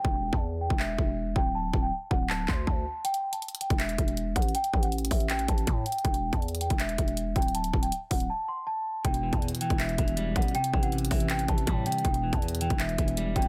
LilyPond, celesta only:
\new Staff \with { instrumentName = "Celesta" } { \time 4/4 \key e \minor \tempo 4 = 160 r8. a''16 r8 g''8 e''4. g''8 | a''8. g''16 r8 fis''8 a''8 c'''8 a''4 | g''8. a''16 r8 g''8 e''4. fis''8 | g''8. fis''16 r8 e''8 g''8 a''4 g''8 |
g''8. a''16 r8 g''8 e''4. g''8 | a''8. g''16 r8 fis''8 a''8 c'''8 a''4 | g''8. a''16 r8 g''8 e''4. fis''8 | g''8. fis''16 r8 e''8 g''8 a''4 g''8 |
g''8. a''16 r8 g''8 e''4. g''8 | }